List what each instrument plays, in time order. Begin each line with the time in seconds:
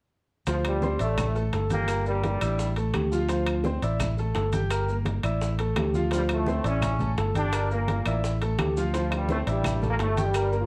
0.47 fingered electric bass D2, grand piano F3 F4 F5, trombone section F3 F4, tine electric piano C5, high bongo, high conga, high timbale, maracas
0.65 trombone section G2 G3, high bongo, high conga, high timbale, claves, maracas
0.82 grand piano C4 C5 C6, high bongo, high conga, maracas
0.99 fingered electric bass A1, trombone section A2 A3, grand piano E4 E5 E6, tine electric piano D5, high conga, high timbale, maracas
1.18 high bongo, high conga, low conga, high timbale, claves, maracas
1.35 grand piano A3 A4 A5, high bongo, high conga, maracas
1.52 fingered electric bass G1, tine electric piano A4, high bongo, low bongo, high conga, high timbale, maracas
1.70 trombone section A#2 A#3, grand piano G4 G5 G6, high bongo, high conga, high timbale, maracas
1.88 tine electric piano A#4, high bongo, high timbale, claves, maracas
2.06 trombone section G2 G3, grand piano A#3 A#4 A#5, high bongo, high conga, maracas
2.23 high bongo, high conga, high timbale, maracas
2.41 fingered electric bass A1, grand piano E4 E5 E6, tine electric piano D5, high timbale, claves, maracas
2.59 high bongo, high conga, maracas
2.76 grand piano A3 A4 A5, high bongo, high conga, high timbale, maracas
2.94 fingered electric bass D2, tine electric piano G4, high bongo, low bongo, high conga, high timbale, claves, maracas
3.11 grand piano F3 F4 F5, high bongo, maracas
3.29 grand piano F3 F4 F5, tine electric piano C5, high bongo, high conga, high timbale, maracas
3.46 high bongo, high conga, high timbale, claves, maracas
3.64 grand piano C4 C5 C6, high bongo, high conga, maracas
3.82 fingered electric bass A1, grand piano E4 E5 E6, tine electric piano D5, high timbale, maracas
4.00 high bongo, high conga, low conga, high timbale, claves, maracas
4.17 grand piano A3 A4 A5, high bongo, high conga, maracas
4.35 fingered electric bass G1, tine electric piano A4, high bongo, low bongo, high conga, high timbale, maracas
4.53 grand piano G4 G5 G6, high bongo, high conga, high timbale, maracas
4.70 tine electric piano A#4, high bongo, high timbale, claves, maracas
4.88 grand piano A#3 A#4 A#5, high bongo, high conga, maracas
5.05 high bongo, high conga, high timbale, maracas
5.23 fingered electric bass A1, grand piano E4 E5 E6, tine electric piano D5, high conga, high timbale, claves, maracas
5.41 high bongo, high conga, maracas
5.59 grand piano A3 A4 A5, high bongo, high conga, high timbale, maracas
5.76 fingered electric bass D2, tine electric piano G4, high bongo, low bongo, high conga, high timbale, low timbale, claves, maracas
5.94 grand piano F3 F4 F5, high bongo, high conga, maracas
6.11 trombone section G2 G3, grand piano F3 F4 F5, tine electric piano C5, high bongo, high conga, high timbale, maracas
6.29 trombone section A2 A3, high bongo, high conga, high timbale, claves, maracas
6.46 grand piano C4 C5 C6, high bongo, high conga, maracas
6.64 fingered electric bass A1, trombone section C#3 C#4, grand piano E4 E5 E6, tine electric piano D5, high timbale, maracas
6.82 high bongo, high conga, low conga, high timbale, claves, maracas
6.99 grand piano A3 A4 A5, high bongo, high conga, low conga, maracas
7.17 fingered electric bass G1, tine electric piano A4, high bongo, low bongo, high conga, high timbale, maracas
7.34 trombone section D3 D4, grand piano G4 G5 G6, high bongo, high conga, high timbale, maracas
7.53 tine electric piano A#4, high bongo, high conga, high timbale, claves, maracas
7.70 trombone section A#2 A#3, grand piano A#3 A#4 A#5, high bongo, high conga, maracas
7.88 high bongo, high conga, high timbale, maracas
8.05 fingered electric bass A1, grand piano E4 E5 E6, tine electric piano D5, high conga, high timbale, claves, maracas
8.24 high bongo, high conga, maracas
8.41 grand piano A3 A4 A5, high bongo, high conga, high timbale, maracas
8.59 fingered electric bass D2, tine electric piano G4, high bongo, low bongo, high conga, high timbale, low timbale, claves, maracas
8.77 grand piano F3 F4 F5, high bongo, maracas
8.94 grand piano F3 F4 F5, trombone section F3 F4, tine electric piano C5, high bongo, high timbale, maracas
9.11 trombone section G2 G3, high bongo, high conga, high timbale, claves, maracas
9.29 trombone section A2 A3, grand piano C4 C5 C6, high bongo, high conga, maracas
9.47 fingered electric bass A1, trombone section G2 G3, grand piano E4 E5 E6, tine electric piano D5, high conga, high timbale, maracas
9.64 high bongo, high conga, low conga, high timbale, claves, maracas
9.82 grand piano A3 A4 A5, high bongo, high conga, low conga, maracas
9.89 trombone section A#2 A#3
9.99 fingered electric bass G1, trombone section A2 A3, tine electric piano A4, high bongo, low bongo, high timbale, low timbale, maracas
10.17 grand piano G4 G5 G6, high bongo, high conga, high timbale, maracas
10.24 trombone section G2 G3
10.34 tine electric piano A#4, high bongo, high timbale, claves, maracas
10.52 grand piano A#3 A#4 A#5, high bongo, high conga, maracas
10.60 trombone section F3 F4